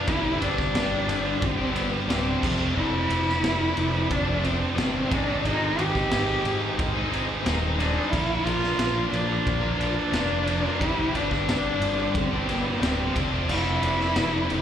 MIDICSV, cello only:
0, 0, Header, 1, 2, 480
1, 0, Start_track
1, 0, Tempo, 671141
1, 52, Time_signature, 4, 2, 24, 8
1, 10454, End_track
2, 0, Start_track
2, 0, Title_t, "Cello"
2, 0, Program_c, 0, 42
2, 53, Note_on_c, 0, 64, 106
2, 292, Note_on_c, 0, 62, 99
2, 302, Note_off_c, 0, 64, 0
2, 1030, Note_on_c, 0, 60, 98
2, 1041, Note_off_c, 0, 62, 0
2, 1274, Note_on_c, 0, 59, 84
2, 1285, Note_off_c, 0, 60, 0
2, 1502, Note_on_c, 0, 60, 98
2, 1513, Note_off_c, 0, 59, 0
2, 1860, Note_off_c, 0, 60, 0
2, 1976, Note_on_c, 0, 64, 126
2, 2944, Note_on_c, 0, 62, 104
2, 2955, Note_off_c, 0, 64, 0
2, 3187, Note_on_c, 0, 60, 91
2, 3197, Note_off_c, 0, 62, 0
2, 3422, Note_off_c, 0, 60, 0
2, 3442, Note_on_c, 0, 60, 97
2, 3676, Note_on_c, 0, 62, 105
2, 3687, Note_off_c, 0, 60, 0
2, 3907, Note_off_c, 0, 62, 0
2, 3910, Note_on_c, 0, 63, 108
2, 4155, Note_on_c, 0, 67, 106
2, 4166, Note_off_c, 0, 63, 0
2, 4865, Note_off_c, 0, 67, 0
2, 5572, Note_on_c, 0, 62, 99
2, 5791, Note_on_c, 0, 64, 104
2, 5802, Note_off_c, 0, 62, 0
2, 6037, Note_on_c, 0, 65, 123
2, 6047, Note_off_c, 0, 64, 0
2, 6497, Note_off_c, 0, 65, 0
2, 6501, Note_on_c, 0, 62, 101
2, 6969, Note_off_c, 0, 62, 0
2, 6994, Note_on_c, 0, 62, 100
2, 7730, Note_on_c, 0, 64, 105
2, 7741, Note_off_c, 0, 62, 0
2, 7977, Note_on_c, 0, 62, 105
2, 7988, Note_off_c, 0, 64, 0
2, 8712, Note_on_c, 0, 60, 95
2, 8723, Note_off_c, 0, 62, 0
2, 8934, Note_off_c, 0, 60, 0
2, 8939, Note_on_c, 0, 59, 92
2, 9179, Note_on_c, 0, 60, 90
2, 9190, Note_off_c, 0, 59, 0
2, 9536, Note_off_c, 0, 60, 0
2, 9664, Note_on_c, 0, 64, 117
2, 10454, Note_off_c, 0, 64, 0
2, 10454, End_track
0, 0, End_of_file